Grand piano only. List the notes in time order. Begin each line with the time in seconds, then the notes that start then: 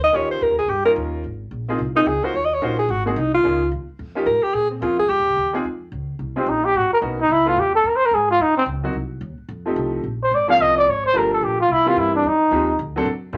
0.12 A#3 C#4 D#4 F4 G4
0.85 A#3 C#4 D#4 F4 A#4
1.69 A#3 C4 D#4 F4 G#4
1.95 A#3 C4 D#4 F4 G#4
2.23 A#3 C#4 D#4 F4 F#4
2.62 A#3 C#4 D#4 F4 F#4
3.05 A#3 C4 D#4 F#4 G#4
3.44 A#3 C#4 D#4 F4 G#4
4.15 A#3 C#4 D#4 F4 G4
4.81 A#3 C4 C#4 F4 G#4
5.53 G#3 C4 D#4 F4 G#4
6.36 G#3 C4 D#4 F4 G4
7.01 A#3 B3 C#4 D#4 F#4
7.45 A3 B3 C#4 E4 F4
8.84 F#3 A#3 C4 D#4 F#4
9.66 F3 A3 C4 D#4 G4
10.48 F3 A#3 C4 C#4 G#4
11.13 F3 A3 A#3 D4 G4
11.85 E3 A#3 C4 C#4 G4
12.51 F3 G#3 C4 D#4 G4
12.96 F#3 A#3 C4 D4 A4
13.33 G3 A#3 C#4